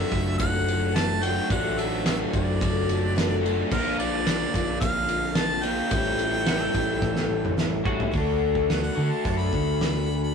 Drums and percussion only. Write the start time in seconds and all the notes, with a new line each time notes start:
0.12 kick, ride
0.40 kick, ride
0.68 ride
0.96 snare, ride
1.23 ride
1.50 kick, ride
1.79 ride
2.06 snare, ride
2.33 kick, ride
2.61 kick, ride
2.89 ride
3.18 snare, ride
3.46 ride
3.71 kick, crash
4.00 ride
4.27 snare, ride
4.54 kick, ride
4.82 kick, ride
5.09 ride
5.35 snare, ride
5.63 ride
5.91 kick, ride
6.19 ride
6.46 snare, ride
6.74 kick, ride
7.02 kick
7.16 snare
7.45 mid tom
7.58 snare
7.85 kick
8.00 floor tom
8.14 kick, open hi-hat
8.55 kick
8.70 snare, open hi-hat
9.25 kick, open hi-hat
9.53 kick
9.81 snare, open hi-hat